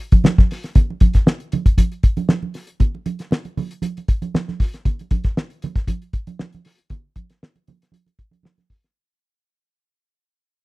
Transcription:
0.12 kick, closed hi-hat, high conga
0.24 snare, muted conga, high conga
0.38 kick, snare, muted conga, high conga
0.51 snare, open hi-hat
0.64 snare, closed hi-hat
0.75 kick, closed hi-hat, muted conga, low conga
0.90 muted conga
1.00 kick, closed hi-hat, high conga
1.14 kick, snare, closed hi-hat
1.26 snare, muted conga
1.40 closed hi-hat
1.52 closed hi-hat, high conga, low conga
1.66 kick, closed hi-hat
1.78 kick, closed hi-hat, muted conga, high conga
1.92 closed hi-hat
2.03 kick, closed hi-hat
2.17 closed hi-hat, high conga
2.29 snare, muted conga, high conga
2.43 muted conga, high conga
2.54 snare, open hi-hat
2.67 closed hi-hat
2.80 kick, closed hi-hat, low conga
2.95 muted conga
3.06 closed hi-hat, high conga
3.19 snare, closed hi-hat
3.31 snare, muted conga
3.45 closed hi-hat, muted conga
3.57 open hi-hat, high conga, low conga
3.71 closed hi-hat
3.82 closed hi-hat, muted conga, high conga
3.97 closed hi-hat, muted conga
4.08 kick, closed hi-hat
4.22 closed hi-hat, high conga
4.35 snare, muted conga, high conga
4.48 snare, muted conga, high conga
4.60 kick, snare, open hi-hat
4.74 snare, closed hi-hat
4.85 kick, closed hi-hat, muted conga, low conga
4.99 closed hi-hat, muted conga
5.11 kick, closed hi-hat, high conga
5.24 kick, snare, closed hi-hat
5.37 snare, muted conga
5.50 closed hi-hat
5.62 closed hi-hat, high conga, low conga
5.76 kick, snare, closed hi-hat
5.87 kick, closed hi-hat, muted conga, high conga
6.02 closed hi-hat
6.13 kick, closed hi-hat
6.27 closed hi-hat, high conga
6.39 snare, muted conga, high conga
6.53 closed hi-hat, muted conga, high conga
6.65 snare, open hi-hat
6.78 closed hi-hat
6.90 kick, closed hi-hat, muted conga, low conga
7.16 kick, closed hi-hat, high conga
7.30 snare, closed hi-hat
7.43 snare
7.56 closed hi-hat, muted conga
7.67 closed hi-hat, high conga, low conga
7.82 snare, closed hi-hat
7.92 closed hi-hat, high conga
8.06 closed hi-hat, muted conga
8.19 kick, closed hi-hat
8.31 closed hi-hat, high conga
8.43 snare, muted conga, high conga
8.58 snare, closed hi-hat, high conga
8.70 kick, snare, open hi-hat
8.84 snare

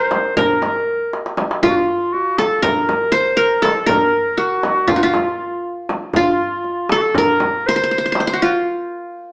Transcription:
Already playing: A#4 C5
0.11 darbuka tek, frame drum
0.37 A#4, darbuka dum, frame drum
0.62 darbuka tek, frame drum
0.76 darbuka ka
1.13 darbuka tek
1.26 darbuka ka
1.37 darbuka tek, frame drum
1.51 darbuka ka
1.63 F4, frame drum, darbuka dum
1.70 F#4
1.77 F4
2.13 F#4, darbuka ka
2.38 A4, darbuka tek, frame drum
2.62 A#4, darbuka dum, frame drum
2.89 darbuka tek, frame drum
3.12 C5
3.37 A#4
3.62 A4, darbuka tek, frame drum
3.86 A#4, darbuka dum, frame drum
4.37 F#4, darbuka ka
4.63 F#4, darbuka tek, frame drum
4.88 F4, darbuka dum, frame drum
4.95 D#4 F4 F#4
5.03 F4
5.14 darbuka tek, frame drum
5.89 darbuka tek, frame drum
6.13 F4, darbuka dum, frame drum
6.64 darbuka ka
6.89 A4, darbuka tek, frame drum
6.97 F#4
7.02 A4
7.15 A#4, darbuka dum, frame drum
7.40 darbuka tek, frame drum
7.67 C5
7.76 C5
7.84 C5
7.91 C5
7.98 C5
8.06 C5
8.12 C5, darbuka tek, frame drum
8.20 C5
8.27 C5
8.33 F#4
8.42 F4

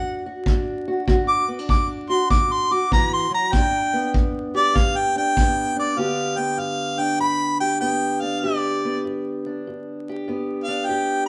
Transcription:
Already playing: D3 D4 F#4 F#5
0.26 F#4
0.46 D3 D4, kick
0.88 F#4
1.07 D3 F#4, kick
1.28 D6
1.48 B3
1.59 D4
1.69 D3 D6, kick
2.09 F#4 C6
2.30 D3 D6, kick
2.52 C6
2.71 F#4 D6
2.91 E3 A#5, kick
3.14 C6
3.31 F#3 A#5
3.52 G2 D4 G5, kick
3.93 B3
4.13 G2, kick
4.54 G4 D5
4.74 G2 F5, kick
4.96 G5
5.16 D4 G5
5.36 G2 B3, kick
5.76 D4 D5
5.96 G2 D3 B3 D4 G4 F5
6.38 B3 G5
6.57 G2 F5
6.99 D4 G5
7.19 G2 B5
7.60 G4 G5
7.80 G2 B3 G5
8.21 D4 F5
8.41 G2 G4 D5
8.85 B3
9.05 G2
9.46 D4
9.67 G2
10.09 G4
10.28 G2 B3
10.64 F5
10.68 D4
10.86 G2 G4 G5

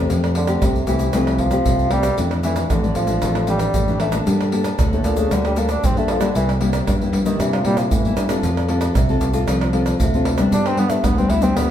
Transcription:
Already playing: A3 C4 G4
0.09 F2 F3, pandeiro, shaker, surdo
0.24 pandeiro, tamborim, shaker
0.35 D3, pandeiro
0.47 A3 C4 G4, pandeiro, tamborim, shaker
0.62 C2 C3, pandeiro, tamborim, shaker, surdo
0.76 pandeiro, shaker
0.87 C2 E3 A3 C4 G4, pandeiro, shaker
0.99 pandeiro, shaker
1.13 C2 F3 A3 C4 G4, pandeiro, tamborim, shaker, surdo
1.27 pandeiro, tamborim, shaker
1.38 F3, pandeiro, surdo
1.51 A3 C4 G4, pandeiro, tamborim, shaker
1.65 C2 C3, pandeiro, shaker, surdo
1.79 pandeiro, shaker
1.91 G3 A3 C4 G4, pandeiro, tamborim
2.03 pandeiro, tamborim, shaker
2.18 F2 E3 A3 D4, pandeiro, shaker, surdo
2.31 pandeiro, tamborim, shaker
2.43 E3 A3 D4, pandeiro, shaker
2.56 pandeiro, tamborim, shaker
2.70 A1 F2 D3, pandeiro, tamborim, shaker, surdo
2.84 E3 A3 D4, pandeiro, shaker
2.95 A1 F3, pandeiro, shaker
3.07 A3 D4, pandeiro, shaker
3.22 A1 F2, pandeiro, tamborim, shaker, surdo
3.35 pandeiro, tamborim, shaker
3.47 E3 G3 A3 D4, pandeiro, shaker
3.59 pandeiro, tamborim, shaker
3.74 A1 F2, pandeiro, shaker, surdo
3.88 E3 A3 D4, pandeiro, shaker
4.00 A3, pandeiro, tamborim
4.12 A#3 D4 A4, pandeiro, tamborim, shaker
4.26 G2 G3, pandeiro, shaker, surdo
4.41 pandeiro, tamborim, shaker
4.52 A#3 D4 A4, pandeiro
4.64 pandeiro, tamborim, shaker
4.79 D2 D3, pandeiro, tamborim, shaker, surdo
4.93 A2 A#3 D4 A4, pandeiro, shaker
5.04 D2 A#2, pandeiro, shaker
5.16 C#3 A#3 D4 A4, pandeiro, shaker
5.31 D2 D3 G3, pandeiro, tamborim, shaker, surdo
5.45 G3, pandeiro, tamborim, shaker
5.56 A#3 D4 A4, pandeiro, shaker
5.69 D4, pandeiro, tamborim, shaker
5.83 G2 D3 C4, pandeiro, shaker, surdo
5.96 A3 A#3 D4 A4, pandeiro, shaker
6.08 F3, pandeiro, tamborim
6.21 D3 G3 A#3 E4, pandeiro, tamborim, shaker
6.35 C2 C3 E3, pandeiro, shaker, surdo
6.49 pandeiro, tamborim, shaker
6.61 G3 A#3 E4, pandeiro
6.73 pandeiro, tamborim, shaker
6.87 G2, pandeiro, tamborim, shaker, surdo
7.01 G3 A#3 E4, pandeiro, shaker
7.13 G2, pandeiro
7.26 D#3 G3 A#3 E4, pandeiro, shaker
7.40 G2 C3 E3, pandeiro, tamborim, shaker, surdo
7.53 F3, pandeiro, tamborim, shaker
7.65 A#2 G3 A#3 E4, pandeiro
7.77 F3, pandeiro, tamborim, shaker
7.91 G2 A2 E3, pandeiro, shaker, surdo
8.05 G3 A#3 E4, pandeiro, shaker
8.17 G2, pandeiro, tamborim, shaker
8.29 C4 F4 A4, pandeiro, tamborim, shaker
8.43 F2 F3, pandeiro, shaker, surdo
8.57 pandeiro, tamborim, shaker
8.68 C4 F4 A4, pandeiro
8.81 pandeiro, tamborim, shaker
8.95 C2 C3, pandeiro, tamborim, shaker, surdo
9.09 C4 F4 A4, pandeiro, shaker
9.21 C2, pandeiro, shaker
9.33 C4 F4 A4, pandeiro, shaker
9.48 C2 F3, pandeiro, tamborim, shaker, surdo
9.61 pandeiro, tamborim, shaker
9.73 C4 F4 A4, pandeiro
9.86 pandeiro, tamborim, shaker
10.00 D2 C3, pandeiro, shaker, surdo
10.14 C4 F4 A4, pandeiro, shaker
10.25 pandeiro, tamborim
10.38 G3 B3 D4, pandeiro, tamborim, shaker
10.52 G2 D4, pandeiro, shaker, surdo
10.66 C4, pandeiro, tamborim, shaker
10.77 G3 B3 D4, pandeiro
10.90 A3, pandeiro, tamborim, shaker
11.03 D2 D3 B3, pandeiro, tamborim, shaker, surdo
11.18 G3 B3 C4 D4, pandeiro, shaker
11.30 D2 E4, pandeiro
11.42 G3 B3 C4 D4, pandeiro, shaker
11.56 D2 G2 B3, pandeiro, tamborim, shaker, surdo

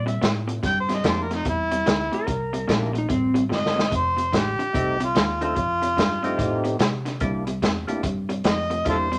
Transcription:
Already playing: A#2
0.06 C3 G3 E5, closed hi-hat
0.21 A2 C3 A3, snare, closed hi-hat
0.48 C3 A3, closed hi-hat
0.63 G2 C3 G3 G5, kick, snare, closed hi-hat
0.80 C5
0.89 C3 G3, snare, closed hi-hat
0.94 D#5
1.04 F2 C3 A3 A#3 D4 E4 G4, kick, snare, closed hi-hat
1.09 C5
1.22 A#4
1.31 C3 A3, snare, closed hi-hat
1.35 D#4
1.45 E2 C3 G3, kick, closed hi-hat
1.49 E4
1.71 C3 G3, closed hi-hat
1.86 D2 C3 A3, snare, closed hi-hat
2.12 C3 A3 A#4, muted fingered electric bass stroke, closed hi-hat
2.27 C2 C3 G3, kick, closed hi-hat
2.53 C3 G3, closed hi-hat
2.68 A#1 C3 A3 A#3 D4 E4 G4, kick, snare, closed hi-hat
2.93 C3 A3, closed hi-hat
2.98 D#4
3.09 A1 C3 G3 C4, kick, closed hi-hat
3.34 C3 G3, closed hi-hat
3.49 G1 C3 A3 D#5, snare
3.66 snare
3.76 C3 A3, snare
3.91 F1 F2 C3, kick, closed hi-hat
3.96 C5
4.17 F2 C3, closed hi-hat
4.33 A1 F2 D3, kick, snare, closed hi-hat
4.37 G4
4.59 F2 D3, muted fingered electric bass stroke, closed hi-hat
4.73 C2 F2 C3 A3 C4 D#4 G4, kick, closed hi-hat
5.00 F2 C3, closed hi-hat
5.05 F4
5.15 D#2 F2 D3, snare, closed hi-hat
5.41 F2 D3 A3 C4 D#4 F4 A4, closed hi-hat
5.56 F2 C3, kick, closed hi-hat
5.82 F2 C3, closed hi-hat
5.97 F2 G2 D3, kick, snare, closed hi-hat
6.23 F2 D3 A3 C4 D#4 G4, closed hi-hat
6.38 F2 A2 C3, kick, closed hi-hat
6.64 F2 C3, closed hi-hat
6.79 F2 C3 D3, snare, closed hi-hat
7.05 F2 D3, snare, closed hi-hat
7.20 C2 C3 G3 A#3 D4 E4 G4, kick, closed hi-hat
7.47 C3 G3, closed hi-hat
7.62 E2 C3 A3, kick, snare, closed hi-hat
7.87 C3 A3 A#3 D4 E4 G4, muted fingered electric bass stroke, closed hi-hat
8.03 G2 C3 G3, kick, closed hi-hat
8.29 C3 G3, closed hi-hat
8.44 F2 C3 A3 D#5, snare, closed hi-hat
8.70 C3 A3, closed hi-hat
8.85 E2 C3 G3 A#3 D4 E4 G4, kick, closed hi-hat
8.89 F4 A4 C5
9.12 C3 G3, closed hi-hat

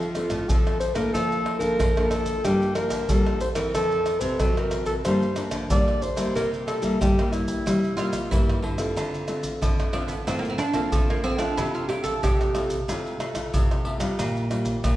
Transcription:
Already playing: F3 F4
0.02 pandeiro, maracas
0.15 C4 D4 A4, pandeiro, tamborim, maracas
0.30 A2, pandeiro, tamborim, maracas, surdo
0.49 F3 C4 D4 A4, pandeiro, maracas, surdo
0.67 pandeiro, tamborim, maracas
0.80 C5, pandeiro, maracas, surdo
0.95 A2 A#3 D4 A4 A#4, pandeiro, tamborim, maracas
1.14 F3 A4, pandeiro, tamborim, maracas, surdo
1.32 pandeiro, maracas
1.46 pandeiro, tamborim
1.59 F3 A#3 D4 A4 A#4, pandeiro, maracas, surdo
1.79 F3, pandeiro, tamborim, maracas, surdo
1.97 A#3 D4 A4, pandeiro, tamborim, maracas, surdo
2.10 A4, pandeiro, tamborim, maracas
2.26 pandeiro, maracas, surdo
2.44 G2 F3 G3 A#3 D4 G4, pandeiro, tamborim, maracas, surdo
2.62 pandeiro, maracas
2.75 F3 A#3 D4 A#4, pandeiro, tamborim, maracas
2.90 D3, pandeiro, tamborim, maracas, surdo
3.09 D3 F3 G3 A#3 D4 A4, pandeiro, maracas, surdo
3.26 pandeiro, tamborim, maracas
3.40 C5, pandeiro, maracas, surdo
3.55 E3 A3 C4 A#4, pandeiro, tamborim, maracas
3.75 F2 F3 A4, pandeiro, tamborim, maracas, surdo
3.92 pandeiro, maracas
4.06 pandeiro, tamborim, maracas
4.20 C3 E3 A3 C4 C5, pandeiro, maracas, surdo
4.40 C3 F#3 A4, pandeiro, tamborim, maracas, surdo
4.57 E3 C4 A#4, pandeiro, tamborim, maracas, surdo
4.71 pandeiro, tamborim, maracas
4.86 A4, pandeiro, maracas, surdo
5.05 G2 F3 G3 A#3 D4 C5, pandeiro, tamborim, maracas, surdo
5.22 pandeiro, maracas
5.36 F3 A#3 D4, pandeiro, tamborim, maracas
5.51 D3, pandeiro, tamborim, maracas, surdo
5.70 D3 F3 G3 A#3 D4 D5, pandeiro, maracas, surdo
5.88 pandeiro, tamborim, maracas
6.02 C5, pandeiro, maracas, surdo
6.16 D3 G3 A#3 E4, pandeiro, tamborim, maracas
6.35 C3 A#4, pandeiro, tamborim, maracas, surdo
6.54 pandeiro, maracas
6.67 A4, pandeiro, tamborim, maracas
6.82 G3 A#3 E4, pandeiro, maracas, surdo
7.01 G2 G3 G4, pandeiro, tamborim, maracas, surdo
7.18 G3 A#3 E4, pandeiro, tamborim, maracas, surdo
7.32 E4, pandeiro, tamborim, maracas
7.48 pandeiro, maracas, surdo
7.66 C3 G3, pandeiro, tamborim, maracas, surdo
7.84 pandeiro, maracas
7.97 G3 A#3 E4 F4, pandeiro, tamborim, maracas
8.13 pandeiro, tamborim, maracas, surdo
8.31 G2 E3 G3 A#3 E4, pandeiro, maracas, surdo
8.49 pandeiro, tamborim, maracas
8.62 D3, pandeiro, surdo
8.78 C4 F4 A4, pandeiro, tamborim, maracas
8.96 D3, pandeiro, tamborim, low agogo, maracas, surdo
9.14 pandeiro, maracas
9.28 A3 C4 F4, pandeiro, tamborim, maracas
9.43 pandeiro, maracas, surdo
9.62 A2 D3, pandeiro, tamborim, high agogo, maracas, surdo
9.80 pandeiro, tamborim, maracas, surdo
9.93 A3 C4 D4 F4, pandeiro, tamborim, high agogo
10.08 B3, pandeiro, maracas, surdo
10.27 A2 D3 A3 C4 F4, pandeiro, tamborim, low agogo, maracas, surdo
10.39 A#3
10.45 pandeiro, maracas
10.50 C4
10.58 D4, pandeiro, tamborim, low agogo, maracas
10.73 A3 A#3 C4 F4, pandeiro, tamborim, maracas, surdo
10.92 A2 D3 A3, pandeiro, high agogo, maracas, surdo
11.10 A#3, pandeiro, tamborim, maracas
11.24 A3 C4 F4, pandeiro, high agogo, surdo
11.38 A3 D4 E4 F4, pandeiro, tamborim, maracas
11.57 C3 E4, pandeiro, tamborim, low agogo, maracas, surdo
11.75 F4, pandeiro, maracas
11.89 A3 E4 F4 G4, pandeiro, tamborim
12.04 A4, pandeiro, maracas, surdo
12.23 C3 G4, pandeiro, tamborim, high agogo, maracas, surdo
12.41 pandeiro, tamborim, maracas, surdo
12.55 A3 E4 F4, pandeiro, tamborim, high agogo, maracas
12.70 pandeiro, maracas, surdo
12.88 C3 A3 E4 F4, pandeiro, tamborim, low agogo, maracas, surdo
13.07 pandeiro, maracas
13.20 A3 E4 F4, pandeiro, tamborim, low agogo, maracas
13.35 A3 E4 F4, pandeiro, tamborim, maracas, surdo
13.53 C3, pandeiro, high agogo, maracas, surdo
13.71 pandeiro, tamborim, maracas
13.85 A3 E4 F4, pandeiro, high agogo
14.00 G3 D4 F4, pandeiro, tamborim, maracas
14.19 A#2, pandeiro, tamborim, low agogo, maracas, surdo
14.37 pandeiro, maracas
14.50 G3 D4 F4, pandeiro, tamborim, maracas
14.65 pandeiro, maracas, surdo
14.84 A#2 F3, pandeiro, tamborim, high agogo, maracas, surdo

